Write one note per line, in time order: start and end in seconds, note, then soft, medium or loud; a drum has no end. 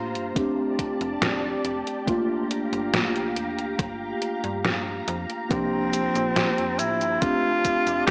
0.00 0.17 A2 medium
0.00 0.27 A#3 medium
0.00 0.28 D4 medium
0.00 0.28 F4 medium
0.00 0.34 F4 medium
0.00 0.29 G4 medium
0.00 0.34 C5 medium
0.00 0.34 A#5 medium
0.15 0.33 G2 medium
0.15 closed hi-hat soft
0.35 1.99 A3 medium
0.35 1.99 C4 medium
0.35 2.00 D4 medium
0.35 5.47 G4 medium
0.35 2.00 G4 medium
0.35 2.06 D5 medium
0.35 2.06 A5 medium
0.35 kick loud
0.35 closed hi-hat medium
0.79 kick medium
0.79 closed hi-hat medium
1.01 1.18 F1 medium
1.01 closed hi-hat soft
1.22 1.58 F1 medium
1.22 snare loud
1.22 closed hi-hat medium
1.65 1.83 F1 medium
1.65 closed hi-hat medium
1.87 closed hi-hat medium
2.06 5.41 A3 medium
2.06 5.42 A#3 medium
2.06 5.42 D4 medium
2.06 5.43 F4 loud
2.06 5.47 F5 medium
2.06 7.18 A#5 medium
2.06 kick loud
2.06 closed hi-hat medium
2.51 closed hi-hat medium
2.73 3.17 G1 medium
2.73 closed hi-hat soft
2.94 snare loud
2.94 closed hi-hat medium
3.15 3.38 C2 medium
3.15 closed hi-hat soft
3.36 3.59 E2 medium
3.36 closed hi-hat medium
3.58 3.75 D2 medium
3.58 closed hi-hat soft
3.79 4.15 G1 medium
3.79 kick loud
3.79 closed hi-hat medium
4.22 closed hi-hat medium
4.44 5.02 G2 medium
4.44 closed hi-hat soft
4.65 snare loud
4.65 closed hi-hat medium
5.08 5.26 F2 loud
5.08 closed hi-hat medium
5.30 closed hi-hat medium
5.49 6.09 C2 medium
5.49 7.20 F3 medium
5.49 7.14 F3 medium
5.49 7.13 A#3 medium
5.49 6.80 C4 loud
5.49 7.13 D4 medium
5.49 7.14 G4 medium
5.49 7.20 C5 medium
5.49 kick loud
5.49 closed hi-hat medium
5.49 cabasa soft
5.93 closed hi-hat medium
5.93 cabasa medium
6.15 6.60 A#1 medium
6.15 closed hi-hat soft
6.15 cabasa soft
6.36 snare loud
6.36 closed hi-hat medium
6.36 cabasa soft
6.58 6.81 F2 medium
6.58 closed hi-hat soft
6.79 7.03 A2 medium
6.79 7.23 E4 loud
6.79 closed hi-hat medium
6.79 cabasa medium
7.01 7.18 G2 medium
7.01 closed hi-hat soft
7.01 cabasa soft
7.21 8.11 A3 medium
7.21 8.11 C4 medium
7.21 8.11 D4 medium
7.21 8.06 F4 loud
7.21 8.11 G4 medium
7.21 8.11 D5 medium
7.21 8.11 A5 medium
7.21 kick loud
7.21 closed hi-hat medium
7.21 cabasa soft
7.65 kick medium
7.65 closed hi-hat medium
7.65 cabasa medium
7.87 8.04 F1 medium
7.87 closed hi-hat soft
7.87 cabasa soft
8.06 8.11 F1 medium
8.06 8.11 G4 loud
8.06 snare loud
8.06 closed hi-hat medium
8.06 cabasa soft